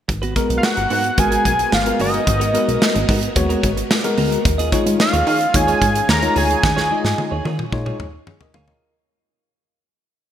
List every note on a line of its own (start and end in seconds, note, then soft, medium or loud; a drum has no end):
0.08 0.39 G#1 loud
0.08 4.41 G#3 medium
0.08 4.41 B3 medium
0.08 4.41 F#4 medium
0.08 4.41 A#4 medium
0.08 muted clean electric guitar stroke soft
0.08 kick loud
0.08 closed hi-hat medium
0.22 0.35 B3 medium
0.22 0.36 F#4 medium
0.22 0.37 B4 medium
0.22 closed hi-hat soft
0.36 0.76 G#3 medium
0.36 0.51 B3 medium
0.36 0.77 B3 medium
0.36 0.77 F#4 medium
0.36 0.50 F#4 medium
0.36 0.77 A#4 medium
0.36 0.48 A#4 medium
0.36 kick medium
0.36 closed hi-hat medium
0.49 0.60 B1 medium
0.49 muted clean electric guitar stroke soft
0.49 closed hi-hat medium
0.58 0.66 F5 medium
0.63 1.21 F#5 loud
0.63 muted clean electric guitar stroke soft
0.63 snare loud
0.76 0.87 G#1 medium
0.76 0.89 B3 soft
0.76 0.90 F#4 medium
0.76 0.91 A#4 medium
0.76 closed hi-hat medium
0.90 1.10 G#2 loud
0.90 1.10 B3 medium
0.90 1.04 F#4 medium
0.90 1.03 A#4 loud
0.90 open hi-hat medium
1.04 muted clean electric guitar stroke medium
1.04 closed hi-hat medium
1.18 1.38 G#1 loud
1.18 1.52 G#3 medium
1.18 1.52 B3 medium
1.18 1.52 F#4 medium
1.18 1.52 A#4 medium
1.18 1.76 G#5 loud
1.18 muted clean electric guitar stroke soft
1.18 kick loud
1.18 closed hi-hat medium
1.31 1.44 B3 medium
1.31 1.44 F#4 medium
1.31 1.45 A#4 medium
1.31 closed hi-hat medium
1.45 1.65 B1 medium
1.45 kick medium
1.45 closed hi-hat medium
1.59 muted clean electric guitar stroke soft
1.59 closed hi-hat medium
1.72 1.92 G#1 medium
1.72 2.01 F5 loud
1.72 muted clean electric guitar stroke soft
1.72 snare medium
1.86 2.20 G#3 medium
1.86 2.20 B3 medium
1.86 2.20 F#4 medium
1.86 2.20 A#4 medium
1.86 muted clean electric guitar stroke soft
1.86 closed hi-hat medium
1.99 2.20 G1 medium
1.99 2.13 B3 medium
1.99 2.13 F#4 loud
1.99 2.12 A#4 medium
1.99 3.06 D#5 medium
1.99 open hi-hat medium
2.13 2.25 B3 medium
2.13 2.26 F#4 medium
2.13 2.27 A#4 medium
2.13 closed hi-hat medium
2.27 2.57 G#1 loud
2.27 kick loud
2.27 closed hi-hat medium
2.40 2.53 B3 medium
2.40 2.54 F#4 medium
2.40 2.55 A#4 medium
2.40 closed hi-hat medium
2.54 2.95 G#3 medium
2.54 2.95 B3 medium
2.54 2.69 B3 medium
2.54 2.95 F#4 medium
2.54 2.68 F#4 medium
2.54 2.95 A#4 medium
2.54 2.67 B4 medium
2.54 closed hi-hat medium
2.68 2.78 B1 medium
2.68 muted clean electric guitar stroke soft
2.68 closed hi-hat medium
2.81 muted clean electric guitar stroke soft
2.81 snare loud
2.95 3.05 G#1 loud
2.95 3.07 B3 soft
2.95 3.08 F#4 medium
2.95 3.09 A#4 medium
2.95 closed hi-hat medium
3.08 3.29 G#2 loud
3.08 3.28 B3 medium
3.08 3.22 F#4 loud
3.08 3.21 A#4 medium
3.08 kick loud
3.08 open hi-hat medium
3.22 muted clean electric guitar stroke soft
3.22 closed hi-hat medium
3.36 3.56 D#2 loud
3.36 3.70 G#3 medium
3.36 3.70 B3 medium
3.36 3.70 F#4 medium
3.36 3.70 C#5 loud
3.36 muted clean electric guitar stroke soft
3.36 kick loud
3.36 closed hi-hat medium
3.49 3.62 B3 medium
3.49 3.63 F#4 medium
3.49 3.63 A#4 medium
3.49 closed hi-hat medium
3.63 3.83 G#1 loud
3.63 muted clean electric guitar stroke soft
3.63 kick medium
3.63 closed hi-hat medium
3.77 muted clean electric guitar stroke medium
3.77 closed hi-hat medium
3.90 muted clean electric guitar stroke soft
3.90 snare loud
4.04 4.38 G#3 loud
4.04 4.38 B3 medium
4.04 4.38 F#4 medium
4.04 4.38 A#4 loud
4.04 muted clean electric guitar stroke medium
4.04 closed hi-hat medium
4.17 4.38 D2 medium
4.17 4.32 B3 medium
4.17 4.31 F#4 medium
4.17 4.30 A#4 medium
4.17 open hi-hat medium
4.31 4.47 B3 medium
4.31 4.45 F#4 medium
4.31 4.45 A#4 medium
4.31 closed hi-hat medium
4.45 4.75 D#2 loud
4.45 8.77 D#3 medium
4.45 8.78 C#4 medium
4.45 8.78 F4 medium
4.45 8.78 G#4 medium
4.45 muted clean electric guitar stroke soft
4.45 kick loud
4.45 closed hi-hat medium
4.58 4.71 F4 medium
4.58 4.72 G#4 medium
4.58 4.73 D#5 medium
4.58 closed hi-hat medium
4.72 5.13 G#3 medium
4.72 5.13 D#4 medium
4.72 4.87 F4 medium
4.72 5.13 F4 medium
4.72 4.86 G#4 medium
4.72 5.13 C#5 medium
4.72 4.85 C#5 medium
4.72 kick medium
4.72 closed hi-hat medium
4.86 4.96 G#2 medium
4.86 muted clean electric guitar stroke soft
4.86 closed hi-hat medium
4.99 5.57 F5 medium
4.99 muted clean electric guitar stroke soft
4.99 snare loud
5.13 5.23 D#2 loud
5.13 5.26 F4 medium
5.13 5.27 G#4 medium
5.13 5.27 C#5 medium
5.13 closed hi-hat medium
5.27 5.47 D#3 loud
5.27 5.46 F4 medium
5.27 5.41 G#4 medium
5.27 5.39 C#5 medium
5.27 open hi-hat medium
5.41 muted clean electric guitar stroke soft
5.41 closed hi-hat medium
5.54 5.74 D#2 loud
5.54 5.88 G#3 medium
5.54 5.88 D#4 medium
5.54 5.88 F4 medium
5.54 5.88 C#5 loud
5.54 6.10 G#5 loud
5.54 muted clean electric guitar stroke soft
5.54 kick loud
5.54 closed hi-hat medium
5.67 5.80 F4 medium
5.67 5.81 G#4 medium
5.67 5.82 C#5 medium
5.67 closed hi-hat medium
5.81 6.01 G#2 medium
5.81 muted clean electric guitar stroke soft
5.81 kick medium
5.81 closed hi-hat medium
5.95 muted clean electric guitar stroke medium
5.95 closed hi-hat medium
6.09 6.29 D#2 medium
6.09 6.39 A#5 loud
6.09 muted clean electric guitar stroke soft
6.09 snare medium
6.22 6.56 G#3 medium
6.22 6.56 D#4 medium
6.22 6.56 F4 medium
6.22 6.56 C#5 medium
6.22 muted clean electric guitar stroke medium
6.22 closed hi-hat soft
6.36 6.56 D2 medium
6.36 6.50 F4 medium
6.36 6.49 G#4 medium
6.36 6.48 C#5 loud
6.36 7.46 G#5 loud
6.36 open hi-hat medium
6.49 6.62 F4 soft
6.49 6.63 G#4 medium
6.49 6.63 C#5 medium
6.49 closed hi-hat medium
6.63 6.93 D#2 loud
6.63 kick loud
6.63 snare medium
6.76 6.89 F4 medium
6.76 6.90 G#4 medium
6.76 6.92 C#5 medium
6.76 snare medium
6.90 7.31 G#3 medium
6.90 7.31 D#4 medium
6.90 7.06 F4 medium
6.90 7.31 F4 medium
6.90 7.04 G#4 medium
6.90 6.97 D5 medium
6.90 7.04 D#5 medium
6.97 7.35 D#5 medium
7.04 7.14 G#2 medium
7.04 muted clean electric guitar stroke soft
7.04 snare medium
7.18 muted clean electric guitar stroke soft
7.18 high tom medium
7.31 7.41 D#2 loud
7.31 7.44 F4 soft
7.31 7.45 G#4 medium
7.31 7.45 C#5 medium
7.45 7.65 D#3 loud
7.45 7.64 F4 medium
7.45 7.59 G#4 medium
7.45 7.57 C#5 medium
7.45 high tom medium
7.59 muted clean electric guitar stroke soft
7.59 mid tom medium
7.72 7.92 A#2 loud
7.72 8.06 G#3 medium
7.72 8.06 D#4 medium
7.72 8.06 F4 medium
7.72 8.07 C#5 loud
7.72 muted clean electric guitar stroke soft
7.72 kick loud
7.86 7.99 F4 medium
7.86 7.99 G#4 medium
7.86 8.00 C#5 medium
7.86 mid tom medium
8.00 8.20 D#2 medium
8.00 mid tom medium
8.13 muted clean electric guitar stroke soft
8.27 8.40 G#4 medium
8.27 8.40 C#5 medium
8.27 muted clean electric guitar stroke soft
8.27 mid tom medium
8.41 8.54 A#4 medium
8.41 8.54 D#5 medium
8.41 muted clean electric guitar stroke soft
8.41 floor tom medium
8.54 8.74 D2 loud
8.54 8.68 F4 medium
8.54 8.67 G#4 medium
8.54 8.68 A#4 medium
8.54 8.66 C#5 medium
8.54 8.67 F5 medium
8.54 floor tom loud
8.67 8.84 F4 medium
8.67 8.83 G#4 medium
8.67 8.94 A#4 medium
8.67 8.83 C#5 medium
8.67 8.94 D#5 medium
8.67 floor tom medium